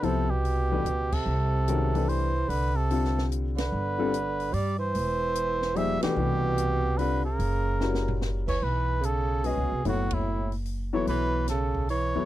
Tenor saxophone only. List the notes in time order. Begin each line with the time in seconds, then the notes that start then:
0.04 C3
0.31 B2
1.12 C3
2.08 E3
2.49 D3
2.75 C3
3.56 D3
4.53 G3
4.78 E3
5.75 G3
6.01 B2
6.98 D3
7.25 C#3
8.47 E3
8.61 E3
9.02 C#3
9.44 B2
9.85 A2
10.14 A2
10.94 E3
11.09 E3
11.50 C#3
11.90 E3